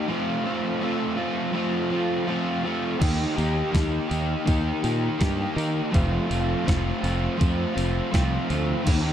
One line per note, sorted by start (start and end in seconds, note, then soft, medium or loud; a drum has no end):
0.08 0.80 F3 medium
0.08 0.47 A3 medium
0.08 0.45 C4 medium
0.08 0.43 F4 loud
0.44 0.81 A3 medium
0.44 0.82 C4 medium
0.44 0.83 F4 medium
0.81 1.52 F3 medium
0.81 1.19 A3 medium
0.81 1.17 C4 medium
0.81 1.15 F4 medium
1.16 1.53 A3 medium
1.16 1.54 C4 medium
1.16 1.55 F4 medium
1.53 2.26 F3 loud
1.53 1.92 A3 medium
1.53 1.90 C4 medium
1.53 1.89 F4 loud
1.90 2.28 A3 medium
1.90 2.28 C4 medium
1.90 2.30 F4 medium
2.27 2.99 F3 medium
2.27 2.66 A3 medium
2.27 2.65 C4 medium
2.27 2.63 F4 medium
2.64 3.00 A3 medium
2.64 3.00 C4 medium
2.64 2.99 F4 medium
2.99 3.25 D#2 loud
2.99 3.70 D#3 medium
2.99 3.37 A#3 medium
2.99 3.36 D#4 medium
2.99 3.34 G4 loud
2.99 kick loud
2.99 crash loud
3.35 3.61 D#2 medium
3.35 3.72 A#3 medium
3.35 3.73 D#4 medium
3.35 3.74 G4 medium
3.35 open hi-hat medium
3.71 3.98 D#2 medium
3.71 4.44 D#3 medium
3.71 4.10 A#3 medium
3.71 4.08 D#4 medium
3.71 kick loud
3.71 open hi-hat medium
3.76 4.07 G4 medium
3.76 snare loud
4.08 4.34 D#2 medium
4.08 4.45 A#3 medium
4.08 4.46 D#4 medium
4.08 4.47 G4 medium
4.08 open hi-hat medium
4.45 4.71 D#2 medium
4.45 5.17 D#3 medium
4.45 4.84 A#3 medium
4.45 4.83 D#4 loud
4.45 4.81 G4 loud
4.45 kick loud
4.45 open hi-hat medium
4.82 5.07 A#2 medium
4.82 5.18 A#3 medium
4.82 5.19 D#4 medium
4.82 5.20 G4 medium
4.82 open hi-hat medium
5.18 5.44 G2 medium
5.18 5.91 D#3 medium
5.18 5.57 A#3 medium
5.18 5.55 D#4 medium
5.18 5.54 G4 medium
5.18 kick loud
5.18 snare loud
5.18 open hi-hat medium
5.55 5.80 D#3 medium
5.55 5.92 A#3 medium
5.55 5.91 D#4 medium
5.55 5.91 G4 medium
5.55 open hi-hat medium
5.91 6.18 F1 loud
5.91 6.63 F3 medium
5.91 6.30 A3 loud
5.91 6.28 C4 medium
5.91 6.26 F4 loud
5.91 kick loud
5.91 open hi-hat medium
6.27 6.54 F1 medium
6.27 6.66 C4 medium
6.27 6.67 F4 medium
6.31 6.65 A3 medium
6.31 open hi-hat medium
6.64 6.91 F1 medium
6.64 7.36 F3 medium
6.64 7.03 A3 medium
6.64 7.02 C4 medium
6.64 7.00 F4 medium
6.64 kick loud
6.64 open hi-hat medium
6.69 snare loud
7.02 7.27 F1 loud
7.02 7.37 A3 medium
7.02 7.39 C4 medium
7.02 7.39 F4 medium
7.02 open hi-hat medium
7.37 7.64 F2 medium
7.37 8.10 F3 medium
7.37 7.76 A3 medium
7.37 7.74 C4 loud
7.37 7.73 F4 loud
7.37 kick loud
7.37 open hi-hat medium
7.74 8.00 F1 medium
7.74 8.12 A3 medium
7.74 8.13 C4 medium
7.74 8.13 F4 medium
7.74 open hi-hat medium
8.11 8.37 C2 medium
8.11 8.83 F3 medium
8.11 8.51 A3 medium
8.11 8.49 C4 medium
8.11 8.47 F4 medium
8.11 kick loud
8.11 snare loud
8.11 open hi-hat medium
8.48 8.73 D2 medium
8.48 8.85 A3 medium
8.48 8.85 C4 medium
8.48 8.84 F4 medium
8.48 open hi-hat medium
8.84 9.10 D#2 loud
8.84 9.13 D#3 medium
8.84 9.13 A#3 medium
8.84 9.13 D#4 medium
8.84 kick loud
8.84 crash loud
8.88 9.13 G4 loud